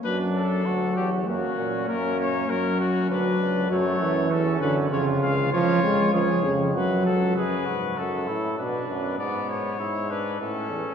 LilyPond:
<<
  \new Staff \with { instrumentName = "Trumpet" } { \time 3/4 \key b \minor \tempo 4 = 99 b'8 a'4 g'8 fis'4 | ais'8 cis''8 ais'8 fis'8 b'4 | cis''4 a'8 b'8 cis''8 eis''8 | cis''4 cis''8 r8 b'8 a'8 |
b'4 a'4 b'4 | d''8 cis''4 b'8 a'4 | }
  \new Staff \with { instrumentName = "Flugelhorn" } { \time 3/4 \key b \minor d'4 fis'4 cis'4~ | cis'2 d'4 | a4 cis'4 eis'4 | eis'4 gis'8 r8 fis'4 |
gis'8 fis'4 e'8 d'4 | b4 e'8 d'8 cis'4 | }
  \new Staff \with { instrumentName = "Trombone" } { \clef bass \time 3/4 \key b \minor fis4 fis4 ais4 | ais4 fis4 fis4 | fis8 e4 d8 cis4 | eis8 gis8 eis8 cis8 fis4 |
r2. | r2. | }
  \new Staff \with { instrumentName = "Euphonium" } { \clef bass \time 3/4 \key b \minor fis,4 d,8 e,8 fis,8 ais,8 | fis,4 fis,4 d,8 cis,8 | fis,8 fis,8 e,8 fis,8 eis,8 cis,8 | cis,8 eis,8 cis,8 eis,8 fis,8 cis,8 |
fis,8 gis,8 fis,8 a,8 b,8 fis,8 | gis,4 gis,4 a,8 e,8 | }
>>